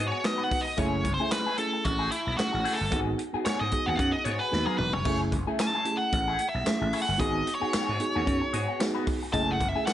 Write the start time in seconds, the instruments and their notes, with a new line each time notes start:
Already playing: clean electric guitar B3 F#4
0.00 slap bass G#2, clean electric guitar G#4
0.08 clean electric guitar G#4, lead electric guitar C#5
0.12 clean electric guitar B3 F#4
0.22 reed electric piano B3 D#4 F#4 B4, lead electric guitar D#5, muted clean electric guitar stroke, snare, clap, closed hi-hat
0.38 clean electric guitar B3 F#4 B4
0.44 lead electric guitar F#5
0.50 muted clean electric guitar stroke, kick, open hi-hat
0.61 lead electric guitar D#5, muted clean electric guitar stroke
0.77 slap bass F#1, clean electric guitar A3 E4 G#4, reed electric piano A3 C#4 E4 G#4, lead electric guitar C#5, kick, closed hi-hat
1.04 slap bass F#1, muted clean electric guitar stroke, kick, closed hi-hat
1.14 lead electric guitar C5
1.19 reed electric piano A3 C#4 E4 G#4, clean electric guitar A3 E4 G#4
1.31 lead electric guitar B4, muted clean electric guitar stroke, snare, clap, closed hi-hat
1.46 clean electric guitar A3 E4 G#4
1.58 reed electric piano A3 C#4 E4 G#4, lead electric guitar A4, muted clean electric guitar stroke, closed hi-hat
1.73 muted clean electric guitar stroke
1.84 slap bass A1, lead electric guitar F#4, muted clean electric guitar stroke, kick, closed hi-hat
1.99 clean electric guitar A3 E4 G#4
2.11 lead electric guitar E4, muted clean electric guitar stroke, closed hi-hat
2.26 slap bass B1, muted clean electric guitar stroke
2.37 reed electric piano G#3 C#4 E4 G#4, lead electric guitar F#4, muted clean electric guitar stroke, muted slap bass stroke, snare, clap, closed hi-hat
2.44 reed electric piano A3
2.53 slap bass A1, muted clean electric guitar stroke
2.64 clean electric guitar A3 E4 G#4, open hi-hat
2.73 lead electric guitar A4
2.79 slap bass G1, muted clean electric guitar stroke
2.91 slap bass G#1, clean electric guitar B3 F#4 G#4, reed electric piano B3 D#4 F#4 G#4, kick, closed hi-hat
3.18 muted clean electric guitar stroke, closed hi-hat
3.33 reed electric piano B3 D#4 F#4 G#4, clean electric guitar B3 F#4 G#4, muted slap bass stroke
3.45 clean electric guitar B3 F#4 G#4, lead electric guitar C#5, muted slap bass stroke, snare, clap, closed hi-hat
3.60 slap bass G#2, lead electric guitar D#5
3.72 reed electric piano B3 D#4 F#4 G#4, muted clean electric guitar stroke, kick, closed hi-hat
3.86 slap bass D#2, clean electric guitar F#4 G#4, lead electric guitar F#5
3.90 clean electric guitar B3
3.96 slap bass F#2, lead electric guitar F5 F#5, muted clean electric guitar stroke, kick, closed hi-hat
4.12 lead electric guitar D#5, muted clean electric guitar stroke
4.24 slap bass G#2, clean electric guitar B3 F#4 G#4, lead electric guitar C#5, closed hi-hat
4.39 clean electric guitar B3 F#4 G#4, lead electric guitar B4
4.51 slap bass D#2, reed electric piano B3 D#4 F#4 A#4, muted clean electric guitar stroke, snare
4.59 reed electric piano B4
4.66 clean electric guitar B3 F#4 B4, lead electric guitar G#4, high tom
4.77 slap bass E1, lead electric guitar B4, muted clean electric guitar stroke, mid tom
4.93 slap bass F1, lead electric guitar C#5, muted clean electric guitar stroke, floor tom
5.05 slap bass F#1, clean electric guitar A3 E4 G#4, reed electric piano A3 C#4 E4 G#4, kick, splash
5.32 slap bass F#1, muted clean electric guitar stroke, kick, closed hi-hat
5.47 reed electric piano A3 C#4 E4 G#4, clean electric guitar A3 E4 G#4
5.59 lead electric guitar A5, muted clean electric guitar stroke, snare, clap, closed hi-hat, tambourine
5.75 clean electric guitar A3 E4 G#4
5.85 reed electric piano A3 C#4 E4 G4, muted clean electric guitar stroke, closed hi-hat
5.92 reed electric piano G#4
5.97 lead electric guitar F#5
6.02 muted clean electric guitar stroke
6.12 slap bass A1, muted clean electric guitar stroke, kick, closed hi-hat
6.28 clean electric guitar A3 E4 G#4
6.39 muted clean electric guitar stroke, closed hi-hat
6.49 lead electric guitar E5
6.55 slap bass B1, muted clean electric guitar stroke
6.65 reed electric piano A3 C#4 E4 G#4, muted slap bass stroke, muted clean electric guitar stroke, snare, clap, closed hi-hat, tambourine
6.81 slap bass A1, muted clean electric guitar stroke
6.93 clean electric guitar A3 E4 G#4, open hi-hat
7.02 lead electric guitar F#5
7.09 slap bass G1, muted clean electric guitar stroke
7.18 slap bass G#1, reed electric piano B3 D#4 F#4 G#4, clean electric guitar B3 F#4 G#4, lead electric guitar D#5, kick, closed hi-hat
7.47 muted clean electric guitar stroke, closed hi-hat
7.55 lead electric guitar C#5
7.60 reed electric piano B3 D#4 F#4 G#4, clean electric guitar B3 F#4 G#4, muted slap bass stroke
7.73 clean electric guitar B3 F#4 G#4, muted slap bass stroke, snare, clap, closed hi-hat, tambourine
7.89 slap bass G#2
8.00 reed electric piano B3 D#4 F#4 G#4, muted clean electric guitar stroke, closed hi-hat
8.15 slap bass D#2, clean electric guitar B3 F#4 G#4
8.27 slap bass F#2, muted clean electric guitar stroke, kick, closed hi-hat
8.42 muted clean electric guitar stroke
8.53 slap bass G#2, clean electric guitar B3 F#4 G#4, closed hi-hat
8.68 clean electric guitar B3 F#4 G#4
8.80 reed electric piano B3 D#4 F#4 G#4, muted clean electric guitar stroke, snare, clap, closed hi-hat, tambourine
8.95 clean electric guitar B3 F#4 B4
9.07 muted clean electric guitar stroke, kick, open hi-hat
9.23 muted clean electric guitar stroke
9.33 slap bass F#1, reed electric piano A3 C#4 E4 G#4, clean electric guitar A3 E4 G#4, lead electric guitar A5, kick, closed hi-hat
9.51 lead electric guitar F#5
9.60 slap bass F#1, muted clean electric guitar stroke, kick, closed hi-hat
9.69 lead electric guitar E5
9.75 reed electric piano A3 C#4 E4 G#4, clean electric guitar A3 E4 G#4
9.86 lead electric guitar F#5, muted clean electric guitar stroke, snare, clap, closed hi-hat, tambourine